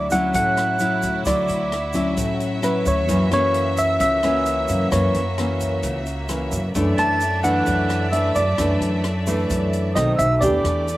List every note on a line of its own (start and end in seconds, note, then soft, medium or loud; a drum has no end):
0.00 0.30 D2 medium
0.00 0.32 D3 medium
0.00 3.04 E4 medium
0.00 6.71 F#4 medium
0.00 0.13 D5 medium
0.00 6.70 E5 medium
0.11 0.76 F#3 medium
0.11 0.77 C#4 medium
0.11 0.77 E4 medium
0.11 0.34 F#5 medium
0.11 0.32 F#6 medium
0.11 kick soft
0.11 closed hi-hat soft
0.11 shaker medium
0.33 0.99 A1 medium
0.33 1.23 A2 medium
0.33 1.22 F#5 medium
0.33 1.21 F#6 medium
0.33 kick soft
0.33 closed hi-hat medium
0.33 shaker medium
0.57 cross-stick medium
0.57 closed hi-hat soft
0.57 shaker soft
0.79 1.22 F#3 medium
0.79 1.22 C#4 medium
0.79 1.22 E4 medium
0.79 closed hi-hat soft
0.79 shaker medium
1.02 1.24 D2 medium
1.02 kick soft
1.02 closed hi-hat soft
1.02 shaker medium
1.25 1.47 D2 medium
1.25 2.15 D3 medium
1.25 1.71 F#3 medium
1.25 1.72 E4 medium
1.25 2.14 D5 medium
1.25 2.13 D6 medium
1.25 kick medium
1.25 cross-stick medium
1.25 closed hi-hat medium
1.25 shaker medium
1.48 2.13 D2 medium
1.48 closed hi-hat soft
1.48 shaker soft
1.72 cross-stick medium
1.72 closed hi-hat soft
1.93 2.59 F#3 medium
1.93 2.59 C#4 medium
1.93 2.59 E4 medium
1.93 kick soft
1.93 closed hi-hat soft
1.93 shaker medium
2.17 2.82 A1 medium
2.17 3.07 A2 soft
2.17 kick medium
2.17 closed hi-hat soft
2.17 shaker medium
2.40 closed hi-hat soft
2.40 shaker soft
2.62 3.05 F#3 medium
2.62 3.05 C#4 medium
2.62 3.05 E4 medium
2.62 2.87 B4 medium
2.62 2.84 B5 medium
2.62 cross-stick medium
2.62 closed hi-hat soft
2.62 shaker medium
2.86 3.09 D2 loud
2.86 3.29 C#5 medium
2.86 3.28 C#6 medium
2.86 kick soft
2.86 closed hi-hat soft
2.86 shaker medium
3.08 3.98 F#2 medium
3.08 3.30 F#2 medium
3.08 3.28 E3 medium
3.08 3.28 A#3 medium
3.08 6.72 A#3 medium
3.08 3.28 C#4 medium
3.08 kick soft
3.08 closed hi-hat soft
3.08 shaker medium
3.31 3.96 F#2 medium
3.31 4.19 E3 medium
3.31 4.19 A#3 medium
3.31 4.20 C#4 medium
3.31 3.80 C#5 medium
3.31 3.74 C#6 medium
3.31 cross-stick medium
3.31 closed hi-hat soft
3.31 shaker soft
3.54 closed hi-hat soft
3.77 4.00 E5 loud
3.77 3.98 E6 medium
3.77 kick soft
3.77 closed hi-hat soft
3.77 shaker medium
4.00 4.65 C#2 medium
4.00 4.89 C#3 medium
4.00 4.95 E5 medium
4.00 4.88 E6 medium
4.00 kick medium
4.00 closed hi-hat medium
4.00 shaker medium
4.23 4.88 E3 medium
4.23 4.89 A#3 medium
4.23 4.89 C#4 medium
4.23 cross-stick medium
4.23 closed hi-hat soft
4.23 shaker soft
4.46 closed hi-hat soft
4.46 shaker medium
4.68 4.90 F#2 loud
4.68 kick soft
4.68 closed hi-hat soft
4.68 shaker medium
4.91 5.81 F#2 medium
4.91 5.13 F#2 medium
4.91 5.21 E3 medium
4.91 5.21 A#3 medium
4.91 5.22 C#4 medium
4.91 5.80 C#5 medium
4.91 5.79 C#6 medium
4.91 kick medium
4.91 cross-stick medium
4.91 closed hi-hat medium
4.91 shaker medium
5.14 5.79 F#2 medium
5.14 closed hi-hat soft
5.14 shaker soft
5.38 5.99 E3 medium
5.38 6.00 A#3 soft
5.38 6.00 C#4 medium
5.38 cross-stick medium
5.38 closed hi-hat soft
5.60 kick soft
5.60 closed hi-hat soft
5.60 shaker medium
5.83 6.48 C#2 medium
5.83 6.73 C#3 soft
5.83 kick medium
5.83 closed hi-hat medium
5.83 shaker medium
6.06 closed hi-hat soft
6.06 shaker soft
6.29 6.60 E3 soft
6.29 6.60 A#3 soft
6.29 6.60 C#4 medium
6.29 cross-stick medium
6.29 closed hi-hat soft
6.29 shaker medium
6.52 6.73 F#2 medium
6.52 kick soft
6.52 closed hi-hat soft
6.52 shaker medium
6.75 6.96 F#2 medium
6.75 7.64 F#2 medium
6.75 7.21 E3 medium
6.75 9.93 A3 medium
6.75 7.21 A3 medium
6.75 9.93 D4 medium
6.75 7.21 D4 medium
6.75 9.93 D5 medium
6.75 9.93 E5 medium
6.75 kick medium
6.75 closed hi-hat medium
6.75 shaker medium
6.97 7.63 F#2 medium
6.97 7.46 A5 medium
6.97 7.40 A6 medium
6.97 cross-stick medium
6.97 closed hi-hat soft
6.97 shaker soft
7.21 closed hi-hat soft
7.21 shaker medium
7.43 8.09 E3 medium
7.43 8.09 A3 medium
7.43 8.09 D4 medium
7.43 8.15 F#5 medium
7.43 8.08 F#6 medium
7.43 kick soft
7.43 closed hi-hat soft
7.43 shaker medium
7.66 8.56 F#2 soft
7.66 8.31 F#2 medium
7.66 kick medium
7.66 closed hi-hat soft
7.66 shaker medium
7.89 cross-stick medium
7.89 closed hi-hat soft
7.89 shaker soft
8.11 8.42 E3 medium
8.11 8.42 A3 medium
8.11 8.42 D4 medium
8.11 8.36 E5 medium
8.11 8.33 E6 medium
8.11 closed hi-hat soft
8.34 8.57 F#2 loud
8.34 8.78 D5 medium
8.34 8.77 D6 medium
8.34 kick soft
8.34 closed hi-hat soft
8.34 shaker medium
8.58 9.48 F#2 medium
8.58 8.80 F#2 medium
8.58 9.04 E3 medium
8.58 9.04 A3 medium
8.58 9.04 D4 medium
8.58 kick medium
8.58 cross-stick medium
8.58 closed hi-hat medium
8.58 shaker medium
8.81 9.46 F#2 medium
8.81 closed hi-hat soft
8.81 shaker soft
9.04 cross-stick medium
9.04 closed hi-hat soft
9.27 9.92 E3 medium
9.27 9.92 A3 medium
9.27 9.92 D4 medium
9.27 kick soft
9.27 closed hi-hat soft
9.27 shaker medium
9.50 9.93 F#2 medium
9.50 9.94 F#2 medium
9.50 kick medium
9.50 closed hi-hat soft
9.50 shaker medium
9.73 closed hi-hat soft
9.73 shaker soft
9.94 10.17 B1 loud
9.94 10.25 D#3 medium
9.94 10.97 A3 medium
9.94 10.26 A3 medium
9.94 10.26 C4 medium
9.94 10.41 D#4 medium
9.94 10.41 C5 medium
9.94 10.19 D#5 medium
9.94 10.15 D#6 medium
9.94 cross-stick medium
9.94 closed hi-hat soft
9.94 shaker medium
10.16 10.44 B1 loud
10.16 10.42 E5 loud
10.16 10.38 E6 medium
10.16 kick soft
10.16 closed hi-hat soft
10.16 shaker medium
10.39 10.63 E2 medium
10.39 10.97 E3 medium
10.39 10.87 A3 medium
10.39 10.87 D4 medium
10.39 10.97 G4 medium
10.39 10.88 G4 medium
10.39 10.97 D5 medium
10.39 10.97 D6 medium
10.39 kick medium
10.39 closed hi-hat soft
10.39 shaker medium
10.64 10.97 E2 medium
10.64 cross-stick medium
10.64 closed hi-hat soft
10.64 shaker soft
10.88 closed hi-hat soft
10.88 shaker medium